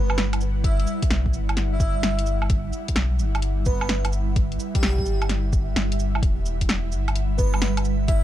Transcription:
Already playing: G1 G3 E4 B4 D5 F#5
0.10 low woodblock
0.18 snare, closed hi-hat
0.33 closed hi-hat, low woodblock
0.41 cabasa
0.64 E5, kick, closed hi-hat
0.80 closed hi-hat
0.87 cabasa
1.02 kick, closed hi-hat
1.10 B1, snare, closed hi-hat
1.26 kick
1.33 G1, cabasa
1.46 E5, closed hi-hat, low woodblock
1.57 snare, closed hi-hat
1.72 E5
1.80 kick, cabasa
2.03 snare, closed hi-hat
2.19 closed hi-hat
2.26 cabasa
2.42 low woodblock
2.50 kick, closed hi-hat
2.73 cabasa
2.88 kick, closed hi-hat
2.96 B1, snare, closed hi-hat
3.19 G1, cabasa
3.35 closed hi-hat, low woodblock
3.42 closed hi-hat
3.65 B4, kick, cabasa
3.81 low woodblock
3.89 snare, closed hi-hat
4.05 closed hi-hat, low woodblock
4.13 cabasa
4.36 kick, closed hi-hat
4.52 closed hi-hat
4.60 cabasa
4.74 G4, kick, closed hi-hat
4.82 B1, snare, closed hi-hat
4.98 kick
5.06 G1, cabasa
5.22 closed hi-hat, low woodblock
5.29 snare, closed hi-hat
5.53 kick, cabasa
5.76 G1, snare, closed hi-hat
5.92 closed hi-hat
6.00 cabasa
6.15 low woodblock
6.22 E1, kick, closed hi-hat
6.46 cabasa
6.61 kick, closed hi-hat
6.69 snare, closed hi-hat
6.92 G1, cabasa
7.08 closed hi-hat, low woodblock
7.16 closed hi-hat
7.38 B4, kick, cabasa
7.54 low woodblock
7.62 snare, closed hi-hat
7.77 closed hi-hat, low woodblock
7.85 cabasa
8.07 E5, kick, closed hi-hat

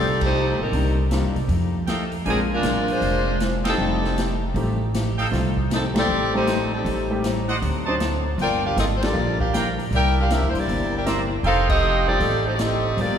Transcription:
Already playing: C2 C4 D#4 G4 A4 D5 F5 G5
0.00 F3 A3 D#4 G4
0.21 A3 D#4 G4 C5, kick, crash
0.37 F3 A3 D#4 G4
0.59 A#1 G3 C4 D#4 A#4
0.72 C2 C3 G3 A#3 C4 D4 D#4, open hi-hat
0.76 A#3 D#4
1.11 C3 G3 A#3 C4 D4 D#4 F4, snare, closed hi-hat
1.23 G2
1.36 C3, open hi-hat
1.48 F2 F3 A3 D#4, open hi-hat
1.53 G4
1.87 F3 A3 D#4 G4 A4 D#5 F5 G5, snare, closed hi-hat
2.12 open hi-hat
2.26 A#1 A#2 F3 G#3 A#3 C4 D4 F4 G#4 A#4 C5 D5 G#5, open hi-hat
2.30 C4
2.54 G#3 D4 F4 A#4
2.63 B1 A#2 G#3 C4 D4, snare, closed hi-hat
2.88 G#3 D4 F4 C5, open hi-hat
3.01 F1 A#2 G#3 C4 D4, open hi-hat
3.40 A#2 G#3 C4 D4, snare, closed hi-hat
3.64 G3 C4 D#4 A4 D#5 F5 G5, snare, ride
3.78 F1 F3 G3 A3 C4 D#4 F4 G4
4.04 snare
4.16 F3 A3 D#4 G4, snare, closed hi-hat
4.54 A1 F3 G3 A3 C4 D#4 G4, open hi-hat
4.94 F3 A3 D#4 G4, snare, closed hi-hat
5.18 A4 D#5 F5 G5, open hi-hat
5.31 C2 F3 G3 A3 C4 D#4 F4 G4, snare, open hi-hat
5.57 kick
5.70 F3 G3 A3 C4 D#4 G4 A4, snare, closed hi-hat
5.94 G3 A3 C4 D#4 G4 A4 D5, snare, ride
5.98 G4
6.08 A1 F3 A3 D#4 G4
6.34 G3 A3 C4 D#4 G4 C5
6.47 F3 A3 D#4 G4, snare, closed hi-hat
6.74 G3 C4 D#4 A4
6.85 A1 A2 G3 C4 D#4, open hi-hat
7.11 G3 A3 C4 D#4 G4
7.24 A2 G3 C4 D#4, snare, closed hi-hat
7.48 C5 D5 D#5 F#5, open hi-hat
7.62 D2 D3 F#3 C4 D#4, open hi-hat
7.86 F#3 C4 D4 D#4 C5 D5 D#5 A5
8.00 D3 F#3 C4 D#4, snare, closed hi-hat
8.38 G1 G2 F3 A#3 D4 F4 A#4 D5 G5, open hi-hat
8.66 D4 G4 A#4 F5
8.76 G#1 G2 F3 A#3 C4 D4 F4 A4 D#5, snare, closed hi-hat
8.96 C5
9.02 G3 A#3 D4 F4 G4 A4 D5, snare, ride
9.14 A#1 G2 F3 A#3 D4
9.40 D4 G4 A#4 F5, kick
9.53 G2 F3 A#3 D4 A#4 D5 F5 G5, snare, closed hi-hat
9.79 open hi-hat
9.91 C2 C3 E3 A#3 D4 E4 A#4 D5 G5, open hi-hat
10.19 D4 G4 A#4 F5
10.30 C3 E3 G3 A#3 C4 D4 E4 G4 A#4 E5, snare, closed hi-hat
10.43 E2
10.48 C5
10.54 G2, open hi-hat
10.59 A#3 E4 G4 D5
10.68 G1 C3 E3 A#3 D4, open hi-hat
10.96 E4 A#4 D5 G5
11.05 C3 E3 G3 A#3 C4 D4 E4 A#4 C5 D5 E5 A#5, snare, closed hi-hat
11.43 F1 F3 A3 D#4 G4 A4 C5 F5 G5, open hi-hat
11.69 C4 G4 A4 D#5, kick, crash
11.82 F3 A3 D#4 G4
12.07 G3 C4 D#4 F4 G4 A4 D5
12.20 A1 F3 A3 D#4 G4, open hi-hat
12.46 A3 D#4 G4 C5
12.55 F3 D5, closed hi-hat
12.59 A3 C4 D#4 G4 A4 D#5, snare
12.97 G1 G2 F3 A#3 D4 F4 G4 D5, open hi-hat

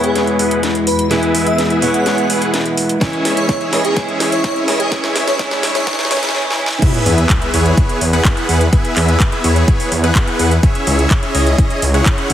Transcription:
Already playing: E2 B2 E3 G#3 B3 E4 G#4 B4 C#5, riser
0.04 G#4, closed hi-hat
0.16 B3 E4 G#4 B4 C#5, snare, closed hi-hat
0.27 closed hi-hat
0.39 B3 E4 G#4 B4 F#5, open hi-hat
0.51 closed hi-hat
0.63 snare, closed hi-hat
0.75 closed hi-hat
0.87 B4, open hi-hat
0.99 closed hi-hat
1.10 E3 G#3 B3 E4 G#4 B4 E5, snare, closed hi-hat
1.23 closed hi-hat
1.35 open hi-hat
1.46 E5, closed hi-hat
1.58 snare, closed hi-hat
1.70 B3 E4 G#4 B4 E5, closed hi-hat
1.81 E3 G#3 B3 E4 G#4 B4 C#5 F#5, open hi-hat
1.94 F#5, closed hi-hat
2.06 B3 E4 G#4 B4 C#5, snare, closed hi-hat
2.18 closed hi-hat
2.30 B3 E4 G#4 B4 F#5, open hi-hat
2.42 closed hi-hat
2.54 snare, closed hi-hat
2.66 closed hi-hat
2.77 open hi-hat
2.89 closed hi-hat
3.00 C#2 G#2 E3 G#3 C#4 E4 G#4 C#5 E5, kick, snare, closed hi-hat
3.13 closed hi-hat
3.25 snare, open hi-hat
3.37 C#5, closed hi-hat
3.49 C#5, kick, snare, closed hi-hat
3.61 C#4 E4 G#4 C#5 E5, closed hi-hat
3.71 E3 G#3 C#4 E4 G#4 B4 C#5 D#5, snare, open hi-hat
3.85 G#4, closed hi-hat
3.95 E3 G#3 C#4 E4 G#4 C#5 E5, kick, snare, closed hi-hat
4.08 closed hi-hat
4.20 snare, open hi-hat
4.32 C#5, closed hi-hat
4.44 C#5, kick, snare, closed hi-hat
4.56 C#4 E4 G#4 C#5 E5, closed hi-hat
4.67 E3 G#3 C#4 E4 G#4 B4 C#5 D#5, snare, open hi-hat
4.80 G#4, closed hi-hat
4.90 F#2 E3 G#3 C#4 E4 G#4 C#5 E5, kick, snare, closed hi-hat
5.04 snare, closed hi-hat
5.16 snare, open hi-hat
5.27 C#5, snare, closed hi-hat
5.38 E3 G#3 C#4 E4 G#4 C#5 E5, kick, snare, closed hi-hat
5.51 snare, closed hi-hat
5.63 snare, open hi-hat
5.75 C#5, snare, closed hi-hat
5.86 E3 G#3 C#4 E4 G#4 C#5 E5, kick, snare, closed hi-hat
5.93 snare
5.99 C#5, snare, closed hi-hat
6.05 snare
6.10 E3 G#3 C#4 E4 G#4 C#5 E5, snare, open hi-hat
6.17 snare
6.23 C#5, snare, closed hi-hat
6.29 snare
6.33 E3 G#3 C#4 E4, snare
6.50 snare
6.57 E3 G#3 C#4 E4
6.66 snare
6.82 B3 E4 G#4 B4 E5, kick, closed hi-hat, crash, sub drop
6.94 closed hi-hat
7.06 E2, open hi-hat
7.18 closed hi-hat
7.30 kick, clap, closed hi-hat
7.42 B3 E4 G#4 B4 E5, closed hi-hat
7.54 E2 B3 E4 G#4 B4 C#5, open hi-hat
7.66 closed hi-hat
7.77 B3 E4 G#4 B4 C#5, kick, closed hi-hat
7.89 closed hi-hat
8.01 E2, open hi-hat
8.13 B3 E4 G#4 B4 F#5, closed hi-hat
8.25 B3 E4 G#4 B4 F#5, kick, clap, closed hi-hat
8.37 B3 E4 G#4 B4 F#5, closed hi-hat
8.49 E2 B3 E4 G#4 B4 F#5, open hi-hat
8.61 closed hi-hat
8.73 B3 E4 G#4 B4 E5, kick, closed hi-hat
8.85 closed hi-hat
8.96 E2, clap, open hi-hat
9.08 closed hi-hat
9.20 kick, clap, closed hi-hat
9.32 B3 E4 G#4 B4 E5, closed hi-hat
9.44 E2 B3 E4 G#4 B4 C#5, open hi-hat
9.56 closed hi-hat
9.68 B3 E4 G#4 B4 C#5, kick, closed hi-hat
9.80 open hi-hat
9.92 E2, open hi-hat
10.04 B3 E4 G#4 B4 F#5, closed hi-hat
10.15 B3 E4 G#4 B4 F#5, kick, clap, closed hi-hat
10.28 B3 E4 G#4 B4 F#5, closed hi-hat
10.39 E2 B3 E4 G#4 B4 F#5, open hi-hat
10.51 closed hi-hat
10.63 C#4 E4 G#4 C#5 E5, kick, closed hi-hat
10.75 closed hi-hat
10.87 C#2, open hi-hat
10.99 closed hi-hat
11.11 kick, clap, closed hi-hat
11.23 C#4 E4 G#4 C#5 E5, closed hi-hat
11.35 C#2 C#4 E4 G#4 C#5 D#5, open hi-hat
11.47 closed hi-hat
11.58 C#4 E4 G#4 C#5 D#5, kick, closed hi-hat
11.70 closed hi-hat
11.82 C#2, open hi-hat
11.94 C#4 E4 G#4 C#5 F#5, closed hi-hat
12.06 C#4 E4 G#4 C#5 F#5, kick, clap, closed hi-hat
12.18 C#4 E4 G#4 C#5 F#5, closed hi-hat
12.30 C#2 C#4 E4 G#4 C#5 F#5, open hi-hat

